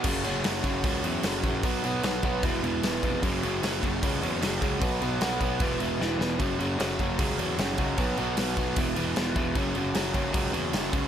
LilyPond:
<<
  \new Staff \with { instrumentName = "Overdriven electric guitar" } { \clef bass \time 4/4 \key b \major \tempo 4 = 152 <fis, cis fis>8 <fis, cis fis>8 <fis, cis fis>8 <fis, cis fis>8 <fis, cis fis>8 <fis, cis fis>8 <fis, cis fis>8 <fis, cis fis>8 | <b, fis b>8 <b, fis b>8 <b, fis b>8 <b, fis b>8 <e, b, e>8 <e, b, e>8 <e, b, e>8 <e, b, e>8 | <fis, cis fis>8 <fis, cis fis>8 <fis, cis fis>8 <fis, cis fis>8 <fis, cis fis>8 <fis, cis fis>8 <fis, cis fis>8 <fis, cis fis>8 | <b, fis b>8 <b, fis b>8 <b, fis b>8 <b, fis b>8 <e, b, e>8 <e, b, e>8 <e, b, e>8 <e, b, e>8 |
<fis, cis fis>8 <fis, cis fis>8 <fis, cis fis>8 <fis, cis fis>8 <fis, cis fis>8 <fis, cis fis>8 <fis, cis fis>8 <fis, cis fis>8 | <b, fis b>8 <b, fis b>8 <b, fis b>8 <b, fis b>8 <e, b, e>8 <e, b, e>8 <e, b, e>8 <e, b, e>8 | <fis, cis fis>8 <fis, cis fis>8 <fis, cis fis>8 <fis, cis fis>8 <fis, cis fis>8 <fis, cis fis>8 <fis, cis fis>8 <fis, cis fis>8 | }
  \new Staff \with { instrumentName = "Picked electric bass" } { \clef bass \time 4/4 \key b \major fis,,8 fis,,8 fis,,8 fis,,8 cis,8 e,8 fis,,8 ais,,8 | b,,8 b,,8 b,,8 b,,8 e,,8 e,,8 e,,8 eis,,8 | fis,,8 fis,,8 fis,,8 fis,,8 cis,8 e,8 fis,,8 cis,8 | b,,8 b,,8 b,,8 b,,8 e,,8 e,,8 e,,8 e,,8 |
fis,,8 fis,,8 fis,,8 fis,,8 cis,8 e,8 fis,,8 cis,8 | b,,8 b,,8 b,,8 b,,8 e,,8 e,,8 e,,8 e,,8 | fis,,8 fis,,8 fis,,8 fis,,8 cis,8 e,8 fis,,8 cis,8 | }
  \new DrumStaff \with { instrumentName = "Drums" } \drummode { \time 4/4 <cymc bd>8 cymc8 <cymc sn>8 <cymc bd>8 <cymc bd>8 cymc8 <cymc sn>8 <cymc bd>8 | <cymc bd>8 cymc8 <cymc sn>8 <cymc bd>8 <cymc bd>8 cymc8 <cymc sn>8 <cymc bd>8 | <cymc bd>8 cymc8 <cymc sn>8 <cymc bd>8 <cymc bd>8 cymc8 <cymc sn>8 <cymc bd>8 | <cymc bd>8 cymc8 <cymc sn>8 <cymc bd>8 <cymc bd>8 cymc8 sn8 sn8 |
<cymc bd>8 cymc8 <cymc sn>8 <cymc bd>8 <cymc bd>8 cymc8 <cymc sn>8 <cymc bd>8 | <cymc bd>8 cymc8 <cymc sn>8 <cymc bd>8 <cymc bd>8 cymc8 <cymc sn>8 <cymc bd>8 | <cymc bd>8 cymc8 <cymc sn>8 <cymc bd>8 <cymc bd>8 cymc8 <cymc sn>8 <cymc bd>8 | }
>>